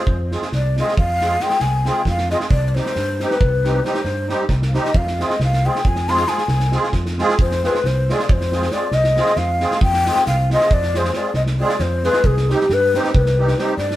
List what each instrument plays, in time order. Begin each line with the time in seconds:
Already playing: ney C5
0.07 fingered electric bass F2, kick
0.32 accordion G#3 C4 F4 G#4, snare
0.42 snare
0.52 fingered electric bass C2, ney D5, snare
0.77 accordion G#3 C4 F4 G#4, ney D#5, snare
0.88 snare
0.97 fingered electric bass F2, ney F5, kick
1.21 accordion G#3 C4 F4 G#4, snare
1.40 accordion G#3 C4 F4 G#4, ney G5, snare
1.50 snare
1.60 fingered electric bass C2, ney G#5, snare
1.85 accordion G#3 C4 F4 G#4, ney G5, snare
2.05 fingered electric bass F2, ney F5, kick, snare
2.18 snare
2.30 accordion G#3 C4 F4 G#4, ney D#5, snare
2.40 snare
2.50 fingered electric bass C2, ney D5, kick
2.68 ney D5
2.75 accordion G3 C4 D#4 G4, ney C5, snare
2.86 snare
2.95 fingered electric bass G2, snare
3.20 accordion G3 C4 D#4 G4, ney B4, snare
3.31 snare
3.41 fingered electric bass C2, kick
3.63 accordion G3 C4 D#4 G4, snare
3.84 accordion G3 C4 D#4 G4, ney C5, snare
3.94 snare
4.04 fingered electric bass G2, snare
4.27 accordion G3 C4 D#4 G4, snare
4.49 fingered electric bass C2, kick, snare
4.62 snare
4.68 ney F5
4.73 accordion G3 C4 D#4 G4, ney D#5, snare
4.85 snare
4.94 fingered electric bass F2, ney F5, kick
5.07 snare
5.18 accordion G#3 C4 F4 G#4, snare
5.22 ney D#5
5.30 snare
5.39 fingered electric bass C2, snare
5.44 ney F5
5.53 snare
5.63 accordion G#3 C4 F4 G#4, ney G5
5.75 snare
5.85 fingered electric bass F2, ney G#5, kick
5.96 snare
6.08 accordion G#3 C4 F4 G#4, ney C6, snare
6.17 snare
6.27 accordion G#3 C4 F4 G#4, ney G#5, snare
6.38 snare
6.48 fingered electric bass C2, snare
6.60 snare
6.71 accordion G#3 C4 F4 G#4, snare
6.83 snare
6.92 fingered electric bass F2, kick, snare
7.06 snare
7.18 accordion G#3 C4 F4 G#4, snare
7.29 snare
7.39 fingered electric bass F2, ney C5, kick
7.51 snare
7.62 accordion G#3 C4 F4 G#4, snare
7.66 ney B4
7.75 snare
7.84 fingered electric bass C2, ney C5, snare
8.09 accordion G#3 C4 F4 G#4, ney D5, snare
8.19 snare
8.29 fingered electric bass F2, ney C5, kick
8.41 snare
8.51 accordion G#3 C4 F4 G#4, snare
8.62 snare
8.71 accordion G#3 C4 F4 G#4, ney D5, snare
8.91 fingered electric bass C2, ney D#5, snare
9.04 snare
9.15 accordion G#3 C4 F4 G#4, snare
9.26 snare
9.36 fingered electric bass F2, ney F5, snare
9.60 accordion G#3 C4 F4 G#4, snare
9.71 snare
9.81 fingered electric bass F2, ney G5, kick
9.93 snare
10.05 accordion G#3 C4 F4 G#4, snare
10.15 snare
10.26 fingered electric bass C2, ney F5, snare
10.50 accordion G#3 C4 F4 G#4, ney D#5, snare
10.60 snare
10.71 fingered electric bass F2, ney D5, kick
10.82 snare
10.94 accordion G#3 C4 F4 G#4, ney C5, snare
11.04 snare
11.13 accordion G#3 C4 F4 G#4, ney D5, snare
11.34 fingered electric bass C2, ney D#5, snare
11.46 snare
11.58 accordion G#3 C4 F4 G#4, ney D5
11.69 snare
11.79 fingered electric bass F2, ney C5, snare
12.03 accordion G#3 C4 F4 G#4, ney B4, snare
12.13 snare
12.24 fingered electric bass C2, ney G#4, kick
12.37 snare
12.48 accordion G3 C4 D#4 G4, ney G4, snare
12.60 snare
12.69 fingered electric bass G2, ney B4, snare
12.94 accordion G3 C4 D#4 G4, ney C5, snare
13.04 snare
13.14 fingered electric bass C2, ney B4, kick
13.26 snare
13.38 accordion G3 C4 D#4 G4
13.48 snare
13.58 accordion G3 C4 D#4 G4, ney C5, snare
13.77 fingered electric bass G2, ney D5, snare
13.91 snare